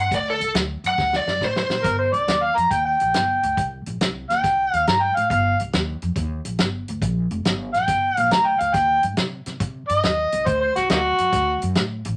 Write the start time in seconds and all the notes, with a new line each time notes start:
0.00 F#5
0.11 D2 D5, kick, closed hi-hat
0.30 A4
0.40 C2, closed hi-hat
0.54 D2, snare, closed hi-hat
0.84 F#2 F#5, closed hi-hat
0.98 D2, kick, snare
1.13 D5, snare
1.27 F#2, snare
1.41 A2 C5, kick, snare
1.56 C5, snare
1.70 A#2, snare
1.83 G1 A#4, kick, snare, closed hi-hat
1.99 C5
2.13 C2 D5, closed hi-hat
2.28 D#2, snare, closed hi-hat
2.43 F5
2.57 F2 A#5, closed hi-hat
2.71 D#2 G5, kick, closed hi-hat
2.86 G5
3.00 A#1, closed hi-hat
3.14 G1, snare, closed hi-hat
3.43 D2, closed hi-hat
3.57 C2, kick, closed hi-hat
3.86 A#1, closed hi-hat
4.01 C2, snare, closed hi-hat
4.30 D#2 G5, snare, closed hi-hat
4.44 C2, kick, snare, closed hi-hat
4.73 D#2, closed hi-hat
4.87 G2 A#5, snare, closed hi-hat
5.01 G5
5.16 A2 F5, closed hi-hat
5.30 G1 F5, kick, closed hi-hat
5.60 C2, closed hi-hat
5.73 D#2, snare, closed hi-hat
6.02 F2, closed hi-hat
6.16 D#2, kick, closed hi-hat
6.45 A#1, closed hi-hat
6.59 G1, snare, closed hi-hat
6.88 D2, closed hi-hat
7.02 A#1, kick, closed hi-hat
7.31 F1, closed hi-hat
7.45 G1, snare, closed hi-hat
7.74 A#1 G5, snare, closed hi-hat
7.88 G1, kick, snare, closed hi-hat
8.17 A#1, closed hi-hat
8.31 D2 A#5, snare, closed hi-hat
8.46 G5
8.60 D2 F5, closed hi-hat
8.74 D#2 G5, kick, snare, closed hi-hat
9.03 G2, closed hi-hat
9.17 C3, snare, closed hi-hat
9.46 C3, snare, closed hi-hat
9.60 C3, kick, closed hi-hat
9.88 G2 D#5, closed hi-hat
10.03 D#2, snare, closed hi-hat
10.32 C2, closed hi-hat
10.46 D2 C5, kick, closed hi-hat
10.61 C5
10.75 C2 F#4, snare, closed hi-hat
10.90 D2 A#3 D#4 F#4, snare, closed hi-hat
11.18 F#2, closed hi-hat
11.33 D2, kick, snare, closed hi-hat
11.62 F#2, closed hi-hat
11.75 A2, snare, closed hi-hat
12.05 A1, closed hi-hat